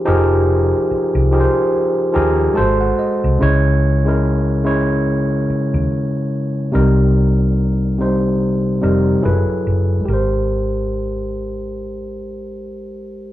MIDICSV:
0, 0, Header, 1, 4, 480
1, 0, Start_track
1, 0, Key_signature, -4, "major"
1, 0, Tempo, 833333
1, 31, Time_signature, 4, 2, 24, 8
1, 7676, End_track
2, 0, Start_track
2, 0, Title_t, "Tine electric piano"
2, 0, Program_c, 0, 4
2, 0, Control_c, 0, 64, 127
2, 0, Note_on_c, 0, 68, 75
2, 0, Note_on_c, 0, 72, 85
2, 30, Note_on_c, 0, 53, 87
2, 32, Note_on_c, 0, 63, 82
2, 36, Note_on_c, 0, 67, 78
2, 40, Note_off_c, 0, 68, 0
2, 40, Note_on_c, 0, 68, 83
2, 49, Note_on_c, 0, 70, 90
2, 656, Note_off_c, 0, 53, 0
2, 657, Note_off_c, 0, 63, 0
2, 659, Note_off_c, 0, 67, 0
2, 661, Note_off_c, 0, 68, 0
2, 665, Note_off_c, 0, 70, 0
2, 755, Note_on_c, 0, 53, 67
2, 760, Note_on_c, 0, 63, 60
2, 764, Note_on_c, 0, 67, 68
2, 767, Note_on_c, 0, 68, 64
2, 771, Note_on_c, 0, 70, 63
2, 804, Note_off_c, 0, 70, 0
2, 807, Note_off_c, 0, 72, 0
2, 807, Note_on_c, 0, 72, 82
2, 1170, Note_off_c, 0, 53, 0
2, 1172, Note_off_c, 0, 63, 0
2, 1174, Note_off_c, 0, 67, 0
2, 1176, Note_off_c, 0, 68, 0
2, 1196, Note_off_c, 0, 72, 0
2, 1222, Note_on_c, 0, 53, 74
2, 1228, Note_on_c, 0, 63, 65
2, 1233, Note_on_c, 0, 82, 59
2, 1237, Note_on_c, 0, 67, 74
2, 1239, Note_on_c, 0, 68, 76
2, 1242, Note_on_c, 0, 70, 80
2, 1455, Note_off_c, 0, 82, 0
2, 1459, Note_on_c, 0, 56, 78
2, 1466, Note_off_c, 0, 53, 0
2, 1467, Note_on_c, 0, 66, 69
2, 1469, Note_off_c, 0, 63, 0
2, 1471, Note_on_c, 0, 81, 59
2, 1473, Note_off_c, 0, 67, 0
2, 1474, Note_on_c, 0, 69, 74
2, 1475, Note_off_c, 0, 68, 0
2, 1476, Note_off_c, 0, 70, 0
2, 1478, Control_c, 0, 64, 0
2, 1481, Note_on_c, 0, 72, 89
2, 1585, Control_c, 0, 64, 127
2, 1598, Note_off_c, 0, 81, 0
2, 1616, Note_on_c, 0, 78, 55
2, 1707, Note_off_c, 0, 78, 0
2, 1721, Note_on_c, 0, 75, 58
2, 1882, Note_off_c, 0, 56, 0
2, 1886, Note_off_c, 0, 66, 0
2, 1889, Note_off_c, 0, 69, 0
2, 1893, Note_off_c, 0, 72, 0
2, 1939, Note_off_c, 0, 75, 0
2, 1952, Note_on_c, 0, 49, 84
2, 1957, Control_c, 0, 64, 0
2, 1960, Note_on_c, 0, 56, 85
2, 1964, Note_on_c, 0, 64, 79
2, 1973, Note_on_c, 0, 73, 103
2, 2064, Control_c, 0, 64, 127
2, 2266, Note_off_c, 0, 49, 0
2, 2270, Note_off_c, 0, 56, 0
2, 2271, Note_off_c, 0, 64, 0
2, 2276, Note_off_c, 0, 73, 0
2, 2332, Note_on_c, 0, 49, 62
2, 2337, Note_on_c, 0, 56, 63
2, 2345, Note_on_c, 0, 64, 60
2, 2350, Note_on_c, 0, 70, 77
2, 2625, Note_off_c, 0, 49, 0
2, 2628, Note_off_c, 0, 56, 0
2, 2632, Note_off_c, 0, 64, 0
2, 2634, Note_off_c, 0, 70, 0
2, 2670, Note_on_c, 0, 49, 68
2, 2675, Note_on_c, 0, 56, 65
2, 2682, Note_on_c, 0, 64, 69
2, 2688, Note_on_c, 0, 73, 82
2, 3496, Note_off_c, 0, 49, 0
2, 3499, Note_off_c, 0, 56, 0
2, 3502, Note_off_c, 0, 64, 0
2, 3505, Note_off_c, 0, 73, 0
2, 3871, Note_on_c, 0, 48, 93
2, 3876, Control_c, 0, 64, 0
2, 3878, Note_on_c, 0, 55, 75
2, 3879, Note_on_c, 0, 63, 78
2, 3888, Note_on_c, 0, 70, 88
2, 3973, Control_c, 0, 64, 127
2, 4496, Note_off_c, 0, 48, 0
2, 4500, Note_off_c, 0, 55, 0
2, 4500, Note_off_c, 0, 63, 0
2, 4505, Note_off_c, 0, 70, 0
2, 4597, Note_on_c, 0, 48, 65
2, 4606, Note_on_c, 0, 55, 57
2, 4611, Note_on_c, 0, 63, 58
2, 4616, Note_on_c, 0, 72, 67
2, 5011, Note_off_c, 0, 48, 0
2, 5016, Note_off_c, 0, 55, 0
2, 5018, Note_off_c, 0, 63, 0
2, 5020, Note_off_c, 0, 72, 0
2, 5073, Note_on_c, 0, 48, 72
2, 5080, Note_on_c, 0, 55, 64
2, 5084, Note_on_c, 0, 63, 64
2, 5090, Note_on_c, 0, 70, 76
2, 5306, Note_on_c, 0, 54, 74
2, 5312, Note_off_c, 0, 48, 0
2, 5315, Note_off_c, 0, 55, 0
2, 5316, Note_on_c, 0, 64, 69
2, 5317, Note_off_c, 0, 63, 0
2, 5317, Control_c, 0, 64, 0
2, 5318, Note_on_c, 0, 68, 62
2, 5319, Note_on_c, 0, 69, 59
2, 5320, Note_off_c, 0, 70, 0
2, 5329, Note_on_c, 0, 71, 79
2, 5409, Control_c, 0, 64, 127
2, 5725, Note_off_c, 0, 54, 0
2, 5730, Note_off_c, 0, 64, 0
2, 5732, Note_off_c, 0, 68, 0
2, 5732, Note_off_c, 0, 69, 0
2, 5737, Note_off_c, 0, 71, 0
2, 5761, Note_on_c, 0, 56, 55
2, 5790, Note_on_c, 0, 67, 54
2, 5798, Control_c, 0, 64, 0
2, 5815, Note_on_c, 0, 70, 59
2, 5837, Note_on_c, 0, 72, 64
2, 5910, Control_c, 0, 64, 127
2, 7676, Note_off_c, 0, 56, 0
2, 7676, Note_off_c, 0, 67, 0
2, 7676, Note_off_c, 0, 70, 0
2, 7676, Note_off_c, 0, 72, 0
2, 7676, End_track
3, 0, Start_track
3, 0, Title_t, "Fingered electric bass"
3, 0, Program_c, 1, 33
3, 46, Note_on_c, 1, 29, 89
3, 418, Note_off_c, 1, 29, 0
3, 662, Note_on_c, 1, 36, 79
3, 845, Note_off_c, 1, 36, 0
3, 1245, Note_on_c, 1, 39, 76
3, 1428, Note_off_c, 1, 39, 0
3, 1486, Note_on_c, 1, 32, 84
3, 1669, Note_off_c, 1, 32, 0
3, 1866, Note_on_c, 1, 36, 74
3, 1940, Note_off_c, 1, 36, 0
3, 1969, Note_on_c, 1, 37, 95
3, 3137, Note_off_c, 1, 37, 0
3, 3307, Note_on_c, 1, 39, 73
3, 3380, Note_off_c, 1, 39, 0
3, 3888, Note_on_c, 1, 36, 91
3, 5056, Note_off_c, 1, 36, 0
3, 5089, Note_on_c, 1, 29, 65
3, 5271, Note_off_c, 1, 29, 0
3, 5330, Note_on_c, 1, 30, 81
3, 5431, Note_off_c, 1, 30, 0
3, 5568, Note_on_c, 1, 30, 67
3, 5750, Note_off_c, 1, 30, 0
3, 5807, Note_on_c, 1, 32, 81
3, 7676, Note_off_c, 1, 32, 0
3, 7676, End_track
4, 0, Start_track
4, 0, Title_t, "Muted fingered electric bass strokes"
4, 525, Note_on_c, 9, 29, 43
4, 582, Note_off_c, 9, 29, 0
4, 3167, Note_on_c, 9, 29, 38
4, 3225, Note_off_c, 9, 29, 0
4, 7676, End_track
0, 0, End_of_file